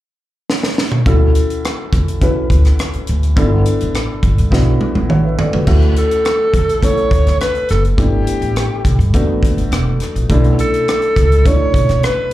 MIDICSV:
0, 0, Header, 1, 6, 480
1, 0, Start_track
1, 0, Key_signature, 2, "major"
1, 0, Tempo, 577478
1, 880, Time_signature, 4, 2, 24, 8
1, 10252, End_track
2, 0, Start_track
2, 0, Title_t, "Alto saxophone"
2, 0, Program_c, 0, 65
2, 4971, Note_on_c, 0, 69, 82
2, 5684, Note_on_c, 0, 73, 94
2, 5697, Note_off_c, 0, 69, 0
2, 6152, Note_off_c, 0, 73, 0
2, 6157, Note_on_c, 0, 71, 83
2, 6381, Note_off_c, 0, 71, 0
2, 6406, Note_on_c, 0, 69, 76
2, 6512, Note_off_c, 0, 69, 0
2, 6637, Note_on_c, 0, 67, 74
2, 7565, Note_off_c, 0, 67, 0
2, 8813, Note_on_c, 0, 69, 86
2, 9528, Note_on_c, 0, 73, 99
2, 9541, Note_off_c, 0, 69, 0
2, 10004, Note_off_c, 0, 73, 0
2, 10020, Note_on_c, 0, 71, 84
2, 10252, Note_off_c, 0, 71, 0
2, 10252, End_track
3, 0, Start_track
3, 0, Title_t, "Grand piano"
3, 0, Program_c, 1, 0
3, 879, Note_on_c, 1, 61, 72
3, 884, Note_on_c, 1, 64, 70
3, 887, Note_on_c, 1, 66, 70
3, 889, Note_on_c, 1, 69, 74
3, 1034, Control_c, 1, 64, 127
3, 1612, Note_off_c, 1, 61, 0
3, 1614, Note_off_c, 1, 64, 0
3, 1616, Note_off_c, 1, 66, 0
3, 1617, Note_off_c, 1, 69, 0
3, 1839, Note_on_c, 1, 61, 76
3, 1842, Note_on_c, 1, 64, 64
3, 1846, Note_on_c, 1, 66, 62
3, 1849, Note_on_c, 1, 71, 81
3, 2571, Note_off_c, 1, 61, 0
3, 2573, Note_off_c, 1, 64, 0
3, 2575, Note_off_c, 1, 66, 0
3, 2576, Note_off_c, 1, 71, 0
3, 2793, Note_on_c, 1, 59, 80
3, 2799, Note_on_c, 1, 64, 68
3, 2801, Note_on_c, 1, 62, 76
3, 2803, Note_on_c, 1, 69, 83
3, 2810, Control_c, 1, 64, 0
3, 2937, Control_c, 1, 64, 127
3, 3528, Note_off_c, 1, 59, 0
3, 3531, Note_off_c, 1, 64, 0
3, 3532, Note_off_c, 1, 62, 0
3, 3533, Note_off_c, 1, 69, 0
3, 3749, Note_on_c, 1, 59, 77
3, 3754, Note_on_c, 1, 62, 62
3, 3756, Note_on_c, 1, 64, 74
3, 3759, Note_on_c, 1, 66, 80
3, 4233, Note_on_c, 1, 78, 48
3, 4239, Note_off_c, 1, 66, 0
3, 4242, Note_on_c, 1, 73, 45
3, 4350, Note_off_c, 1, 78, 0
3, 4354, Note_off_c, 1, 73, 0
3, 4361, Note_on_c, 1, 76, 58
3, 4362, Note_on_c, 1, 71, 50
3, 4474, Note_off_c, 1, 76, 0
3, 4475, Note_off_c, 1, 71, 0
3, 4479, Note_on_c, 1, 74, 60
3, 4482, Note_on_c, 1, 69, 46
3, 4486, Note_off_c, 1, 59, 0
3, 4489, Note_off_c, 1, 62, 0
3, 4489, Note_off_c, 1, 64, 0
3, 4593, Note_off_c, 1, 74, 0
3, 4595, Note_off_c, 1, 69, 0
3, 4598, Note_on_c, 1, 71, 53
3, 4603, Note_on_c, 1, 66, 49
3, 4703, Note_off_c, 1, 66, 0
3, 4710, Note_on_c, 1, 57, 81
3, 4712, Note_on_c, 1, 61, 73
3, 4715, Note_on_c, 1, 66, 77
3, 4717, Note_on_c, 1, 64, 67
3, 4729, Control_c, 1, 64, 0
3, 4827, Note_off_c, 1, 71, 0
3, 4868, Control_c, 1, 64, 127
3, 5447, Note_off_c, 1, 57, 0
3, 5448, Note_off_c, 1, 61, 0
3, 5449, Note_off_c, 1, 66, 0
3, 5450, Note_off_c, 1, 64, 0
3, 5671, Note_on_c, 1, 57, 64
3, 5675, Note_on_c, 1, 61, 56
3, 5678, Note_on_c, 1, 64, 53
3, 5680, Note_on_c, 1, 69, 72
3, 6407, Note_off_c, 1, 57, 0
3, 6410, Note_off_c, 1, 61, 0
3, 6411, Note_off_c, 1, 64, 0
3, 6412, Note_off_c, 1, 69, 0
3, 6628, Note_on_c, 1, 57, 60
3, 6632, Note_on_c, 1, 59, 58
3, 6633, Note_on_c, 1, 62, 59
3, 6636, Note_on_c, 1, 64, 72
3, 6650, Control_c, 1, 64, 0
3, 6805, Control_c, 1, 64, 127
3, 7366, Note_off_c, 1, 57, 0
3, 7368, Note_off_c, 1, 59, 0
3, 7369, Note_off_c, 1, 62, 0
3, 7370, Note_off_c, 1, 64, 0
3, 7597, Note_on_c, 1, 57, 79
3, 7603, Note_on_c, 1, 59, 74
3, 7603, Note_on_c, 1, 62, 70
3, 7607, Note_on_c, 1, 66, 82
3, 8331, Note_off_c, 1, 57, 0
3, 8334, Note_off_c, 1, 59, 0
3, 8334, Note_off_c, 1, 62, 0
3, 8336, Note_off_c, 1, 66, 0
3, 8557, Note_on_c, 1, 57, 77
3, 8563, Note_on_c, 1, 61, 67
3, 8565, Note_on_c, 1, 64, 80
3, 8566, Note_on_c, 1, 62, 78
3, 8569, Control_c, 1, 64, 0
3, 8711, Control_c, 1, 64, 127
3, 9291, Note_off_c, 1, 57, 0
3, 9294, Note_off_c, 1, 61, 0
3, 9295, Note_off_c, 1, 62, 0
3, 9295, Note_off_c, 1, 64, 0
3, 9518, Note_on_c, 1, 57, 59
3, 9522, Note_on_c, 1, 61, 61
3, 9523, Note_on_c, 1, 62, 61
3, 9527, Note_on_c, 1, 64, 69
3, 10252, Note_off_c, 1, 57, 0
3, 10252, Note_off_c, 1, 61, 0
3, 10252, Note_off_c, 1, 62, 0
3, 10252, Note_off_c, 1, 64, 0
3, 10252, End_track
4, 0, Start_track
4, 0, Title_t, "Upright bass"
4, 0, Program_c, 2, 32
4, 885, Note_on_c, 2, 38, 80
4, 1087, Note_off_c, 2, 38, 0
4, 1607, Note_on_c, 2, 40, 75
4, 1910, Note_off_c, 2, 40, 0
4, 2081, Note_on_c, 2, 38, 65
4, 2183, Note_off_c, 2, 38, 0
4, 2210, Note_on_c, 2, 50, 74
4, 2308, Note_off_c, 2, 50, 0
4, 2571, Note_on_c, 2, 38, 73
4, 2770, Note_off_c, 2, 38, 0
4, 2803, Note_on_c, 2, 31, 98
4, 3006, Note_off_c, 2, 31, 0
4, 3175, Note_on_c, 2, 33, 69
4, 3373, Note_off_c, 2, 33, 0
4, 3520, Note_on_c, 2, 31, 79
4, 3622, Note_off_c, 2, 31, 0
4, 3645, Note_on_c, 2, 43, 76
4, 3745, Note_off_c, 2, 43, 0
4, 3759, Note_on_c, 2, 35, 84
4, 3963, Note_off_c, 2, 35, 0
4, 4119, Note_on_c, 2, 31, 80
4, 4241, Note_off_c, 2, 31, 0
4, 4241, Note_on_c, 2, 33, 82
4, 4445, Note_off_c, 2, 33, 0
4, 4602, Note_on_c, 2, 37, 72
4, 4703, Note_off_c, 2, 37, 0
4, 4719, Note_on_c, 2, 38, 82
4, 4923, Note_off_c, 2, 38, 0
4, 5437, Note_on_c, 2, 40, 78
4, 5745, Note_off_c, 2, 40, 0
4, 5912, Note_on_c, 2, 38, 72
4, 6017, Note_off_c, 2, 38, 0
4, 6040, Note_on_c, 2, 50, 79
4, 6142, Note_off_c, 2, 50, 0
4, 6405, Note_on_c, 2, 30, 82
4, 6607, Note_off_c, 2, 30, 0
4, 6636, Note_on_c, 2, 31, 82
4, 6842, Note_off_c, 2, 31, 0
4, 6994, Note_on_c, 2, 33, 70
4, 7201, Note_off_c, 2, 33, 0
4, 7357, Note_on_c, 2, 35, 77
4, 7460, Note_off_c, 2, 35, 0
4, 7469, Note_on_c, 2, 43, 86
4, 7576, Note_off_c, 2, 43, 0
4, 7598, Note_on_c, 2, 40, 76
4, 7803, Note_off_c, 2, 40, 0
4, 7957, Note_on_c, 2, 31, 70
4, 8060, Note_off_c, 2, 31, 0
4, 8075, Note_on_c, 2, 28, 81
4, 8282, Note_off_c, 2, 28, 0
4, 8439, Note_on_c, 2, 34, 73
4, 8542, Note_off_c, 2, 34, 0
4, 8561, Note_on_c, 2, 35, 88
4, 8765, Note_off_c, 2, 35, 0
4, 9282, Note_on_c, 2, 37, 81
4, 9588, Note_off_c, 2, 37, 0
4, 9761, Note_on_c, 2, 35, 72
4, 9863, Note_off_c, 2, 35, 0
4, 9883, Note_on_c, 2, 47, 77
4, 9984, Note_off_c, 2, 47, 0
4, 10252, End_track
5, 0, Start_track
5, 0, Title_t, "Muted upright bass strokes"
5, 2449, Note_on_c, 9, 29, 42
5, 2532, Note_off_c, 9, 29, 0
5, 10252, End_track
6, 0, Start_track
6, 0, Title_t, "Drums"
6, 412, Note_on_c, 9, 38, 61
6, 495, Note_off_c, 9, 38, 0
6, 527, Note_on_c, 9, 38, 66
6, 611, Note_off_c, 9, 38, 0
6, 650, Note_on_c, 9, 38, 79
6, 733, Note_off_c, 9, 38, 0
6, 761, Note_on_c, 9, 45, 76
6, 845, Note_off_c, 9, 45, 0
6, 881, Note_on_c, 9, 36, 99
6, 882, Note_on_c, 9, 42, 72
6, 964, Note_off_c, 9, 36, 0
6, 965, Note_off_c, 9, 42, 0
6, 1121, Note_on_c, 9, 42, 63
6, 1204, Note_off_c, 9, 42, 0
6, 1247, Note_on_c, 9, 42, 43
6, 1330, Note_off_c, 9, 42, 0
6, 1367, Note_on_c, 9, 42, 71
6, 1375, Note_on_c, 9, 37, 90
6, 1450, Note_off_c, 9, 42, 0
6, 1458, Note_off_c, 9, 37, 0
6, 1601, Note_on_c, 9, 36, 83
6, 1604, Note_on_c, 9, 42, 70
6, 1684, Note_off_c, 9, 36, 0
6, 1687, Note_off_c, 9, 42, 0
6, 1729, Note_on_c, 9, 42, 43
6, 1812, Note_off_c, 9, 42, 0
6, 1838, Note_on_c, 9, 42, 80
6, 1841, Note_on_c, 9, 36, 68
6, 1922, Note_off_c, 9, 42, 0
6, 1924, Note_off_c, 9, 36, 0
6, 2078, Note_on_c, 9, 36, 81
6, 2089, Note_on_c, 9, 42, 57
6, 2161, Note_off_c, 9, 36, 0
6, 2172, Note_off_c, 9, 42, 0
6, 2199, Note_on_c, 9, 42, 42
6, 2207, Note_on_c, 9, 37, 27
6, 2283, Note_off_c, 9, 42, 0
6, 2290, Note_off_c, 9, 37, 0
6, 2318, Note_on_c, 9, 42, 73
6, 2327, Note_on_c, 9, 37, 88
6, 2402, Note_off_c, 9, 42, 0
6, 2410, Note_off_c, 9, 37, 0
6, 2438, Note_on_c, 9, 42, 29
6, 2521, Note_off_c, 9, 42, 0
6, 2552, Note_on_c, 9, 42, 56
6, 2635, Note_off_c, 9, 42, 0
6, 2684, Note_on_c, 9, 42, 41
6, 2767, Note_off_c, 9, 42, 0
6, 2799, Note_on_c, 9, 36, 106
6, 2799, Note_on_c, 9, 42, 70
6, 2882, Note_off_c, 9, 36, 0
6, 2883, Note_off_c, 9, 42, 0
6, 3038, Note_on_c, 9, 42, 67
6, 3121, Note_off_c, 9, 42, 0
6, 3162, Note_on_c, 9, 42, 48
6, 3246, Note_off_c, 9, 42, 0
6, 3279, Note_on_c, 9, 42, 69
6, 3287, Note_on_c, 9, 37, 86
6, 3362, Note_off_c, 9, 42, 0
6, 3370, Note_off_c, 9, 37, 0
6, 3515, Note_on_c, 9, 36, 80
6, 3516, Note_on_c, 9, 42, 62
6, 3598, Note_off_c, 9, 36, 0
6, 3599, Note_off_c, 9, 42, 0
6, 3641, Note_on_c, 9, 42, 45
6, 3725, Note_off_c, 9, 42, 0
6, 3756, Note_on_c, 9, 36, 74
6, 3767, Note_on_c, 9, 38, 47
6, 3839, Note_off_c, 9, 36, 0
6, 3850, Note_off_c, 9, 38, 0
6, 3995, Note_on_c, 9, 48, 53
6, 4079, Note_off_c, 9, 48, 0
6, 4117, Note_on_c, 9, 48, 56
6, 4200, Note_off_c, 9, 48, 0
6, 4238, Note_on_c, 9, 47, 69
6, 4321, Note_off_c, 9, 47, 0
6, 4477, Note_on_c, 9, 43, 89
6, 4560, Note_off_c, 9, 43, 0
6, 4598, Note_on_c, 9, 43, 74
6, 4681, Note_off_c, 9, 43, 0
6, 4714, Note_on_c, 9, 36, 96
6, 4714, Note_on_c, 9, 49, 66
6, 4797, Note_off_c, 9, 36, 0
6, 4797, Note_off_c, 9, 49, 0
6, 4834, Note_on_c, 9, 42, 27
6, 4917, Note_off_c, 9, 42, 0
6, 4956, Note_on_c, 9, 42, 64
6, 5039, Note_off_c, 9, 42, 0
6, 5079, Note_on_c, 9, 42, 51
6, 5162, Note_off_c, 9, 42, 0
6, 5194, Note_on_c, 9, 42, 64
6, 5202, Note_on_c, 9, 37, 89
6, 5277, Note_off_c, 9, 42, 0
6, 5285, Note_off_c, 9, 37, 0
6, 5432, Note_on_c, 9, 36, 79
6, 5436, Note_on_c, 9, 42, 67
6, 5516, Note_off_c, 9, 36, 0
6, 5519, Note_off_c, 9, 42, 0
6, 5562, Note_on_c, 9, 42, 44
6, 5645, Note_off_c, 9, 42, 0
6, 5673, Note_on_c, 9, 36, 69
6, 5675, Note_on_c, 9, 42, 86
6, 5756, Note_off_c, 9, 36, 0
6, 5758, Note_off_c, 9, 42, 0
6, 5795, Note_on_c, 9, 42, 30
6, 5878, Note_off_c, 9, 42, 0
6, 5911, Note_on_c, 9, 36, 73
6, 5924, Note_on_c, 9, 42, 57
6, 5994, Note_off_c, 9, 36, 0
6, 6007, Note_off_c, 9, 42, 0
6, 6038, Note_on_c, 9, 42, 39
6, 6046, Note_on_c, 9, 37, 27
6, 6122, Note_off_c, 9, 42, 0
6, 6129, Note_off_c, 9, 37, 0
6, 6154, Note_on_c, 9, 42, 70
6, 6163, Note_on_c, 9, 37, 86
6, 6237, Note_off_c, 9, 42, 0
6, 6246, Note_off_c, 9, 37, 0
6, 6273, Note_on_c, 9, 42, 29
6, 6356, Note_off_c, 9, 42, 0
6, 6388, Note_on_c, 9, 42, 52
6, 6407, Note_on_c, 9, 37, 29
6, 6471, Note_off_c, 9, 42, 0
6, 6490, Note_off_c, 9, 37, 0
6, 6521, Note_on_c, 9, 42, 37
6, 6604, Note_off_c, 9, 42, 0
6, 6634, Note_on_c, 9, 36, 91
6, 6638, Note_on_c, 9, 42, 67
6, 6717, Note_off_c, 9, 36, 0
6, 6721, Note_off_c, 9, 42, 0
6, 6873, Note_on_c, 9, 42, 64
6, 6956, Note_off_c, 9, 42, 0
6, 6996, Note_on_c, 9, 42, 46
6, 7079, Note_off_c, 9, 42, 0
6, 7115, Note_on_c, 9, 42, 72
6, 7123, Note_on_c, 9, 37, 82
6, 7198, Note_off_c, 9, 42, 0
6, 7206, Note_off_c, 9, 37, 0
6, 7354, Note_on_c, 9, 36, 80
6, 7358, Note_on_c, 9, 42, 64
6, 7438, Note_off_c, 9, 36, 0
6, 7441, Note_off_c, 9, 42, 0
6, 7482, Note_on_c, 9, 42, 46
6, 7565, Note_off_c, 9, 42, 0
6, 7595, Note_on_c, 9, 42, 87
6, 7596, Note_on_c, 9, 36, 71
6, 7678, Note_off_c, 9, 42, 0
6, 7679, Note_off_c, 9, 36, 0
6, 7835, Note_on_c, 9, 36, 74
6, 7849, Note_on_c, 9, 42, 61
6, 7918, Note_off_c, 9, 36, 0
6, 7933, Note_off_c, 9, 42, 0
6, 7961, Note_on_c, 9, 42, 42
6, 8044, Note_off_c, 9, 42, 0
6, 8077, Note_on_c, 9, 42, 74
6, 8086, Note_on_c, 9, 37, 89
6, 8160, Note_off_c, 9, 42, 0
6, 8169, Note_off_c, 9, 37, 0
6, 8311, Note_on_c, 9, 42, 59
6, 8330, Note_on_c, 9, 37, 31
6, 8394, Note_off_c, 9, 42, 0
6, 8413, Note_off_c, 9, 37, 0
6, 8444, Note_on_c, 9, 42, 37
6, 8527, Note_off_c, 9, 42, 0
6, 8558, Note_on_c, 9, 36, 99
6, 8561, Note_on_c, 9, 42, 68
6, 8642, Note_off_c, 9, 36, 0
6, 8645, Note_off_c, 9, 42, 0
6, 8679, Note_on_c, 9, 42, 31
6, 8762, Note_off_c, 9, 42, 0
6, 8799, Note_on_c, 9, 42, 67
6, 8882, Note_off_c, 9, 42, 0
6, 8924, Note_on_c, 9, 42, 46
6, 9007, Note_off_c, 9, 42, 0
6, 9043, Note_on_c, 9, 42, 67
6, 9051, Note_on_c, 9, 37, 85
6, 9126, Note_off_c, 9, 42, 0
6, 9134, Note_off_c, 9, 37, 0
6, 9158, Note_on_c, 9, 42, 30
6, 9241, Note_off_c, 9, 42, 0
6, 9280, Note_on_c, 9, 36, 73
6, 9282, Note_on_c, 9, 42, 69
6, 9363, Note_off_c, 9, 36, 0
6, 9365, Note_off_c, 9, 42, 0
6, 9406, Note_on_c, 9, 42, 46
6, 9489, Note_off_c, 9, 42, 0
6, 9522, Note_on_c, 9, 36, 78
6, 9522, Note_on_c, 9, 42, 84
6, 9605, Note_off_c, 9, 36, 0
6, 9605, Note_off_c, 9, 42, 0
6, 9758, Note_on_c, 9, 36, 81
6, 9769, Note_on_c, 9, 42, 58
6, 9842, Note_off_c, 9, 36, 0
6, 9852, Note_off_c, 9, 42, 0
6, 9881, Note_on_c, 9, 42, 42
6, 9889, Note_on_c, 9, 37, 29
6, 9964, Note_off_c, 9, 42, 0
6, 9972, Note_off_c, 9, 37, 0
6, 10000, Note_on_c, 9, 42, 71
6, 10008, Note_on_c, 9, 37, 92
6, 10083, Note_off_c, 9, 42, 0
6, 10092, Note_off_c, 9, 37, 0
6, 10252, End_track
0, 0, End_of_file